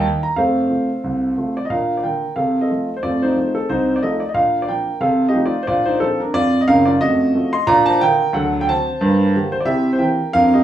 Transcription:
0.00 0.21 D#5 medium
0.00 0.23 G5 medium
0.05 0.23 D#3 soft
0.05 0.23 A#3 soft
0.05 0.23 A#4 medium
0.23 0.37 A#5 medium
0.36 0.65 F2 medium
0.36 0.56 A3 medium
0.36 1.52 A4 medium
0.36 1.52 C5 medium
0.36 1.55 F5 medium
0.69 0.88 C3 soft
0.69 0.88 A3 soft
0.69 0.88 F4 soft
1.04 1.32 C2 medium
1.37 1.55 C3 soft
1.37 1.56 A3 soft
1.37 1.56 F4 medium
1.57 1.63 D5 medium
1.65 1.71 D#5 medium
1.70 1.98 A#2 medium
1.70 1.90 D4 soft
1.70 1.95 A#4 medium
1.70 1.96 F5 medium
1.97 2.04 D5 medium
2.03 2.22 D3 soft
2.03 2.22 A#3 soft
2.03 2.22 F4 soft
2.03 2.35 A#4 medium
2.03 2.36 G5 medium
2.36 2.64 C3 medium
2.36 2.61 A4 medium
2.36 2.62 F5 medium
2.61 2.93 A4 medium
2.61 2.95 D#5 medium
2.70 2.88 F3 soft
2.70 2.88 A3 soft
2.70 2.88 F4 soft
2.97 3.03 C5 medium
3.03 3.31 F2 medium
3.03 3.22 A3 soft
3.03 3.21 F4 medium
3.03 3.22 D5 medium
3.22 3.36 D#4 medium
3.22 3.55 C5 medium
3.36 3.54 F3 soft
3.36 3.55 A3 soft
3.36 3.55 D#4 soft
3.55 3.68 C4 medium
3.55 3.69 A4 medium
3.69 3.97 C2 medium
3.69 3.94 D#4 medium
3.69 3.95 C5 medium
3.96 4.02 D5 medium
4.02 4.20 F3 soft
4.02 4.20 A3 soft
4.02 4.21 D#4 soft
4.02 4.21 A4 medium
4.02 4.22 D#5 medium
4.20 4.28 D5 medium
4.29 4.36 D#5 medium
4.34 4.63 A#2 medium
4.34 4.54 D4 soft
4.34 4.60 A#4 medium
4.34 4.61 F5 medium
4.62 4.69 D5 medium
4.68 4.86 F3 soft
4.68 4.87 A#3 soft
4.68 4.87 D4 soft
4.68 5.00 A#4 medium
4.68 5.02 G5 medium
5.00 5.29 C3 medium
5.00 5.26 A4 medium
5.00 5.28 F5 medium
5.29 5.44 G4 medium
5.29 5.45 D#5 medium
5.34 5.52 F3 soft
5.34 5.53 A3 soft
5.34 5.53 D#4 medium
5.46 5.61 F4 medium
5.46 5.62 D5 medium
5.63 5.69 C5 medium
5.67 5.96 A#2 medium
5.67 5.88 D4 medium
5.67 5.86 F4 medium
5.67 5.87 D5 medium
5.86 6.00 D#4 medium
5.86 6.00 C5 medium
6.00 6.19 F3 soft
6.00 6.20 A#3 soft
6.00 6.20 C4 medium
6.00 6.20 D4 soft
6.00 6.20 A4 medium
6.20 6.35 D4 medium
6.20 6.34 A#4 medium
6.33 6.62 F2 medium
6.33 6.59 F4 medium
6.33 6.61 D5 loud
6.61 6.68 D#5 medium
6.68 6.94 F#1 medium
6.68 6.94 F#2 medium
6.68 6.86 A#4 medium
6.68 6.87 F5 loud
6.85 7.00 F4 medium
6.85 7.00 D5 medium
7.00 7.29 F2 medium
7.00 7.20 A3 medium
7.00 7.34 F#4 medium
7.00 7.51 D#5 loud
7.34 7.53 F3 soft
7.34 7.53 A3 medium
7.34 7.54 F#4 soft
7.53 7.66 D#5 medium
7.53 7.67 C6 loud
7.67 7.96 A#2 loud
7.67 7.87 D4 medium
7.67 7.86 D5 loud
7.67 7.87 A#5 loud
7.86 8.00 C5 medium
7.86 8.00 A5 loud
8.01 8.20 D3 medium
8.01 8.20 A#3 medium
8.01 8.20 F4 medium
8.01 8.33 A#4 medium
8.01 8.34 G5 loud
8.33 8.62 D2 medium
8.33 8.53 F#3 medium
8.33 8.59 A4 medium
8.33 8.60 F#5 medium
8.61 8.68 G5 loud
8.68 8.86 D3 soft
8.68 8.87 C4 soft
8.68 8.87 F#4 medium
8.68 9.51 C5 medium
8.68 9.54 A5 loud
9.01 9.29 G2 loud
9.01 9.20 A#3 medium
9.35 9.53 D3 soft
9.35 9.54 A#3 soft
9.35 9.54 G4 medium
9.52 9.60 C5 medium
9.60 9.67 D5 medium
9.65 9.94 C3 medium
9.65 9.85 E4 medium
9.65 9.91 G4 medium
9.65 9.93 E5 loud
9.93 10.00 C5 medium
9.99 10.18 E3 soft
9.99 10.19 A#3 soft
9.99 10.18 G4 soft
9.99 10.31 A#4 medium
9.99 10.33 G5 medium
10.33 10.62 F2 loud
10.33 10.51 F3 medium
10.33 10.52 A#3 medium
10.33 10.53 D4 medium
10.33 10.52 A#4 medium
10.33 10.53 F5 loud
10.54 10.64 G4 medium
10.54 10.64 D#5 medium

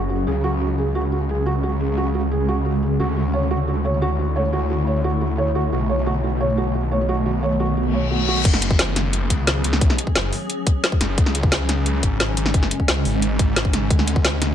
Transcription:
0.00 0.25 F#1 medium
0.00 0.24 F#3 medium
0.00 2.96 C#4 medium
0.00 0.24 G#4 loud
0.10 0.15 F#4 medium
0.27 2.98 C#2 medium
0.27 2.97 C#3 medium
0.27 2.97 G#3 medium
0.27 0.40 G#4 medium
0.44 0.49 F#4 loud
0.61 0.66 F#4 medium
0.78 0.91 G#4 medium
0.95 1.00 F#4 medium
1.12 1.17 F#4 medium
1.29 1.42 G#4 medium
1.46 1.51 F#4 medium
1.63 1.68 F#4 medium
1.80 1.93 G#4 medium
1.97 2.03 F#4 medium
2.14 2.20 F#4 medium
2.31 2.44 G#4 medium
2.48 2.54 F#4 loud
2.65 2.71 F#4 medium
2.83 2.96 G#4 medium
3.00 5.71 D2 medium
3.00 5.70 D3 medium
3.00 8.41 A3 medium
3.00 5.70 E4 medium
3.00 3.05 F#4 loud
3.17 3.22 F#4 medium
3.34 3.42 C#5 medium
3.51 3.56 F#4 loud
3.68 3.73 F#4 medium
3.85 3.94 C#5 medium
4.02 4.07 F#4 loud
4.19 4.24 F#4 medium
4.36 4.45 C#5 medium
4.53 4.58 F#4 medium
4.70 4.75 F#4 medium
4.87 4.96 C#5 medium
5.04 5.09 F#4 medium
5.21 5.26 F#4 medium
5.38 5.47 C#5 medium
5.55 5.60 F#4 medium
5.72 8.43 B1 medium
5.72 8.42 D#3 medium
5.72 8.42 B3 medium
5.72 5.78 F#4 medium
5.89 5.98 C#5 medium
6.06 6.12 F#4 loud
6.23 6.29 F#4 medium
6.41 6.49 C#5 medium
6.58 6.63 F#4 loud
6.75 6.80 F#4 medium
6.92 7.00 C#5 medium
7.09 7.14 F#4 loud
7.26 7.31 F#4 medium
7.43 7.51 C#5 medium
7.60 7.65 F#4 loud
7.77 7.82 F#4 medium
7.77 reverse cymbal medium
7.94 8.03 C#5 medium
8.11 8.24 F#4 medium
8.28 8.37 F#4 medium
8.45 9.29 F#1 medium
8.45 11.15 F#3 medium
8.45 13.86 C#4 medium
8.45 11.15 G#4 loud
8.45 kick loud
8.45 closed hi-hat medium
8.45 crash loud
8.54 snare medium
8.62 closed hi-hat loud
8.71 kick loud
8.79 snare loud
8.79 closed hi-hat medium
8.96 snare medium
8.96 closed hi-hat loud
9.13 closed hi-hat medium
9.30 9.63 C#2 loud
9.30 kick medium
9.30 closed hi-hat loud
9.47 snare loud
9.47 closed hi-hat medium
9.64 9.97 C#2 loud
9.64 closed hi-hat loud
9.73 snare medium
9.81 kick loud
9.81 closed hi-hat medium
9.90 snare medium
9.98 closed hi-hat loud
10.07 kick medium
10.15 10.31 F#1 loud
10.15 snare loud
10.15 closed hi-hat medium
10.33 open hi-hat medium
10.50 closed hi-hat medium
10.67 kick loud
10.67 closed hi-hat loud
10.84 snare loud
10.84 closed hi-hat medium
10.92 kick loud
11.01 11.16 F#1 loud
11.01 snare medium
11.01 closed hi-hat loud
11.18 12.02 C#2 loud
11.18 13.88 C#3 medium
11.18 13.88 G#3 medium
11.18 kick loud
11.18 closed hi-hat medium
11.26 snare soft
11.35 closed hi-hat medium
11.43 kick loud
11.52 snare loud
11.52 closed hi-hat medium
11.69 snare medium
11.69 closed hi-hat medium
11.86 closed hi-hat medium
12.03 12.36 G#1 loud
12.03 kick medium
12.03 closed hi-hat medium
12.20 snare loud
12.20 closed hi-hat medium
12.37 12.70 G#1 loud
12.37 closed hi-hat medium
12.46 snare medium
12.54 kick loud
12.54 closed hi-hat medium
12.63 snare soft
12.71 closed hi-hat medium
12.80 kick medium
12.88 13.04 C#2 loud
12.88 snare loud
12.88 closed hi-hat medium
13.05 13.38 G#1 loud
13.05 open hi-hat medium
13.22 closed hi-hat medium
13.39 13.89 G#1 loud
13.39 kick loud
13.39 closed hi-hat medium
13.56 snare loud
13.56 closed hi-hat medium
13.65 kick loud
13.73 snare medium
13.73 closed hi-hat medium
13.90 14.55 D2 medium
13.90 14.55 D3 medium
13.90 14.55 A3 medium
13.90 14.55 E4 loud
13.90 kick loud
13.90 closed hi-hat medium
13.99 snare soft
14.08 closed hi-hat medium
14.16 kick loud
14.25 snare loud
14.25 closed hi-hat medium
14.42 snare medium
14.42 closed hi-hat medium

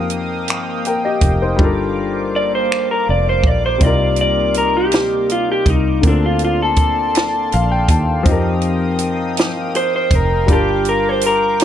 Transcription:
0.00 0.50 F2 medium
0.00 1.53 F3 medium
0.00 10.44 A#3 medium
0.00 1.54 C4 medium
0.00 0.46 D#4 medium
0.00 0.47 G4 medium
0.00 0.48 A#4 medium
0.00 1.57 F5 medium
0.00 3.77 G5 medium
0.00 1.57 D#6 medium
0.10 closed hi-hat medium
0.48 1.19 G2 loud
0.48 finger snap medium
0.48 closed hi-hat medium
0.85 1.04 A#4 medium
0.85 1.03 G5 medium
0.85 closed hi-hat medium
1.05 1.40 G4 medium
1.05 1.39 D#5 medium
1.21 1.60 F1 medium
1.21 kick medium
1.21 closed hi-hat medium
1.42 1.77 D#4 medium
1.42 1.76 C5 medium
1.56 3.03 G1 loud
1.56 3.76 G3 medium
1.56 3.77 D4 medium
1.56 3.78 F4 medium
1.56 5.99 F5 medium
1.56 5.99 D6 medium
1.56 kick loud
1.63 3.79 A4 medium
1.63 3.80 A#4 medium
2.36 2.52 D5 medium
2.55 2.91 C5 medium
2.72 finger snap medium
2.91 3.09 A#4 medium
3.09 3.45 F1 medium
3.09 3.28 D5 medium
3.29 3.47 C5 medium
3.44 3.78 A#1 medium
3.44 3.64 D5 medium
3.44 kick medium
3.66 3.83 C5 medium
3.78 4.94 C2 loud
3.78 5.98 C3 medium
3.78 5.99 G3 medium
3.78 6.01 D#4 medium
3.78 6.00 D5 medium
3.78 kick loud
3.78 closed hi-hat medium
3.83 6.00 D#4 medium
3.83 6.01 F4 medium
3.83 6.02 A#4 medium
3.83 4.20 D5 loud
4.16 closed hi-hat soft
4.21 4.57 D5 medium
4.54 4.75 A#4 medium
4.54 closed hi-hat medium
4.77 5.31 G4 medium
4.92 5.63 D2 medium
4.92 snare medium
4.92 closed hi-hat medium
5.29 5.50 F4 medium
5.29 closed hi-hat medium
5.52 5.69 G4 medium
5.66 6.00 C2 medium
5.66 6.06 D#4 medium
5.66 kick loud
5.66 closed hi-hat medium
6.01 7.48 D2 loud
6.01 8.20 D3 medium
6.01 8.22 A#3 medium
6.01 8.22 C4 medium
6.01 8.24 D5 medium
6.01 8.24 A5 medium
6.01 8.24 C6 medium
6.01 kick loud
6.01 closed hi-hat medium
6.07 6.24 D4 medium
6.07 8.23 F4 medium
6.07 8.24 A4 medium
6.26 6.41 F4 medium
6.39 closed hi-hat soft
6.45 6.60 F4 medium
6.62 8.42 A4 medium
6.76 kick medium
6.76 closed hi-hat medium
7.15 snare medium
7.15 closed hi-hat medium
7.52 7.86 A#1 medium
7.52 7.70 F5 medium
7.52 closed hi-hat medium
7.71 7.88 G5 medium
7.88 8.22 D#2 medium
7.88 8.24 A5 medium
7.88 kick medium
7.88 closed hi-hat medium
8.23 9.38 F2 loud
8.23 10.43 F3 medium
8.23 10.44 C4 medium
8.23 10.44 D#4 medium
8.23 11.64 F5 medium
8.23 11.64 G5 medium
8.23 10.46 D#6 medium
8.23 kick loud
8.23 closed hi-hat medium
8.29 10.45 G4 medium
8.29 10.47 A#4 medium
8.61 closed hi-hat soft
8.99 closed hi-hat medium
9.37 10.08 G2 loud
9.37 snare medium
9.37 closed hi-hat medium
9.75 9.94 C5 medium
9.75 closed hi-hat medium
9.96 10.15 C5 medium
10.11 10.49 F1 medium
10.11 kick medium
10.11 closed hi-hat medium
10.15 10.51 A#4 medium
10.46 11.64 G1 loud
10.46 11.64 G3 medium
10.46 11.64 D4 medium
10.46 11.64 F4 medium
10.46 11.64 A#4 medium
10.46 11.64 D6 medium
10.46 kick loud
10.46 closed hi-hat medium
10.52 10.88 G4 medium
10.52 11.64 A#4 medium
10.52 11.64 A5 medium
10.85 11.09 A#4 medium
10.85 closed hi-hat soft
11.09 11.25 C5 medium
11.21 closed hi-hat medium
11.26 11.62 A#4 medium
11.60 closed hi-hat medium

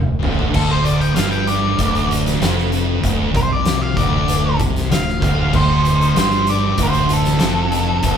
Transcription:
0.00 0.21 D1 medium
0.00 0.15 D2 medium
0.20 0.49 D2 loud
0.20 floor tom loud
0.24 0.52 D1 loud
0.24 0.53 D2 loud
0.39 floor tom medium
0.51 1.12 D1 loud
0.51 1.13 D2 loud
0.51 kick loud
0.51 crash loud
0.55 1.16 D2 loud
0.55 0.70 A4 loud
0.71 0.85 C5 medium
0.84 1.00 D5 medium
0.84 closed hi-hat medium
1.01 1.15 G5 loud
1.01 closed hi-hat medium
1.14 1.74 G1 medium
1.14 1.76 G2 loud
1.14 1.31 F5 loud
1.14 snare loud
1.14 closed hi-hat loud
1.31 1.46 G5 medium
1.31 closed hi-hat soft
1.47 2.08 D5 loud
1.47 closed hi-hat medium
1.77 2.37 D1 loud
1.77 2.39 D2 medium
1.77 kick loud
1.77 closed hi-hat loud
1.95 closed hi-hat medium
2.11 closed hi-hat medium
2.26 snare soft
2.26 closed hi-hat soft
2.39 3.00 F1 loud
2.39 3.00 F2 loud
2.39 snare loud
2.39 closed hi-hat loud
2.58 snare soft
2.72 closed hi-hat medium
3.01 3.33 D1 loud
3.01 3.32 D2 loud
3.01 kick loud
3.01 closed hi-hat medium
3.05 3.35 D2 loud
3.32 3.93 C2 medium
3.32 3.93 C3 loud
3.32 3.50 C5 medium
3.32 kick loud
3.32 closed hi-hat medium
3.37 3.97 C3 medium
3.53 3.82 D5 loud
3.65 snare loud
3.65 closed hi-hat loud
3.81 3.97 F5 loud
3.93 4.57 D2 loud
3.93 4.58 D5 loud
3.93 kick loud
3.93 closed hi-hat medium
3.97 4.56 D1 medium
3.97 4.60 D2 loud
4.28 closed hi-hat medium
4.58 4.89 C2 loud
4.58 4.88 C3 loud
4.58 kick loud
4.58 closed hi-hat medium
4.76 snare soft
4.76 closed hi-hat soft
4.89 5.20 D1 medium
4.89 5.15 D2 medium
4.89 5.52 F5 medium
4.89 snare loud
4.89 closed hi-hat loud
5.08 snare soft
5.20 5.52 D1 loud
5.20 5.49 D2 loud
5.20 kick loud
5.20 closed hi-hat medium
5.50 6.13 D2 loud
5.50 kick loud
5.50 crash loud
5.54 6.13 D1 loud
5.54 6.15 C5 medium
5.85 closed hi-hat medium
6.01 closed hi-hat medium
6.13 6.75 G1 loud
6.13 6.76 G2 loud
6.13 snare loud
6.13 closed hi-hat loud
6.18 6.48 C5 loud
6.32 closed hi-hat soft
6.47 6.79 D5 loud
6.47 closed hi-hat medium
6.77 7.37 D1 medium
6.77 7.41 D2 medium
6.77 kick loud
6.77 closed hi-hat loud
6.83 7.11 C5 medium
6.93 closed hi-hat medium
7.09 closed hi-hat medium
7.13 8.17 A4 loud
7.25 snare soft
7.25 closed hi-hat soft
7.40 8.01 F1 loud
7.40 8.02 F2 loud
7.40 snare loud
7.40 closed hi-hat medium
7.72 closed hi-hat medium
8.03 8.17 D1 medium
8.03 8.17 D2 loud
8.03 kick loud
8.03 closed hi-hat loud

